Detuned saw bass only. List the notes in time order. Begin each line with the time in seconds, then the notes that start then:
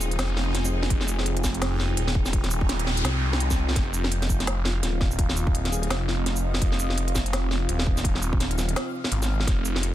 Already playing: D#1
0.19 F1
0.90 F1
1.97 D#1
3.04 C2
3.58 C2
3.76 F1
4.83 D#1
5.90 F1
6.62 F1
7.69 D#1
9.12 G#1
9.47 F1